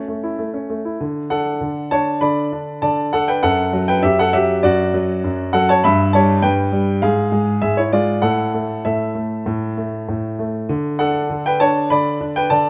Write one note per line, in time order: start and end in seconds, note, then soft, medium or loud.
0.00 0.08 A3 medium
0.00 0.17 C#4 soft
0.00 0.66 A4 soft
0.00 0.69 A5 medium
0.08 0.33 A3 soft
0.23 0.48 E4 soft
0.39 0.68 A3 soft
0.54 0.79 C#4 soft
0.70 0.94 A3 soft
0.85 1.00 E4 soft
1.00 1.59 D3 soft
1.30 1.90 D4 soft
1.30 1.88 A4 medium
1.30 1.91 F#5 medium
1.61 2.20 D3 soft
1.91 2.51 D4 soft
1.91 2.20 C#5 medium
1.91 2.22 A5 medium
2.21 2.81 D3 soft
2.21 2.79 D5 medium
2.21 2.82 B5 medium
2.53 3.12 D4 soft
2.82 3.41 D3 soft
2.82 3.11 D5 medium
2.82 3.13 A5 medium
3.13 3.43 D4 medium
3.13 3.27 A4 medium
3.13 3.28 F#5 medium
3.28 3.43 B4 medium
3.28 3.43 G5 medium
3.43 4.02 F#2 medium
3.43 3.86 A4 medium
3.43 3.88 F#5 loud
3.73 4.32 F#3 medium
3.88 4.03 B4 medium
3.88 4.03 G5 medium
4.03 4.62 F#2 soft
4.03 4.18 G4 medium
4.03 4.18 E5 medium
4.19 4.34 A4 medium
4.19 4.34 F#5 medium
4.33 4.93 F#3 medium
4.33 4.62 G4 medium
4.33 4.63 E5 medium
4.63 5.23 F#2 medium
4.63 5.50 F#4 medium
4.63 5.53 D5 medium
4.94 5.52 F#3 medium
5.24 5.82 F#2 soft
5.53 5.83 F#3 medium
5.53 5.68 A4 medium
5.53 5.68 F#5 medium
5.69 5.83 C#5 medium
5.69 5.84 A5 medium
5.84 6.41 G2 medium
5.84 6.12 E5 medium
5.84 6.13 B5 loud
6.13 6.71 G3 medium
6.13 6.42 C#5 medium
6.13 6.43 A5 medium
6.42 7.01 G2 soft
6.42 6.99 B4 medium
6.42 7.02 G5 medium
6.72 7.01 G3 medium
7.02 7.61 G#2 medium
7.02 7.59 G#4 medium
7.02 7.62 F5 medium
7.32 7.91 G#3 medium
7.62 8.21 G#2 soft
7.62 7.77 G#4 medium
7.62 7.77 E5 medium
7.77 7.92 E4 medium
7.77 7.93 C#5 medium
7.93 8.22 G#3 soft
7.93 8.22 F4 medium
7.93 8.23 D5 medium
8.22 8.84 A2 medium
8.22 8.81 A4 medium
8.22 8.84 F#5 medium
8.54 9.13 A3 soft
8.85 9.45 A2 soft
8.85 10.35 A4 soft
8.85 10.39 E5 medium
9.15 9.45 A3 soft
9.46 10.07 A2 medium
9.77 10.38 A3 soft
10.09 10.68 A2 soft
10.39 10.69 A3 soft
10.69 11.28 D3 medium
10.99 11.59 D4 medium
10.99 11.42 A4 medium
10.99 11.45 F#5 medium
11.30 11.90 D3 soft
11.46 11.60 B4 medium
11.46 11.61 G5 medium
11.60 12.19 D4 medium
11.60 11.89 C#5 medium
11.60 11.90 A5 medium
11.90 12.49 D3 medium
11.90 12.33 D5 medium
11.90 12.35 B5 medium
12.21 12.70 D4 medium
12.36 12.50 B4 medium
12.36 12.51 G5 medium
12.50 12.70 D3 medium
12.50 12.70 D5 medium
12.50 12.70 A5 medium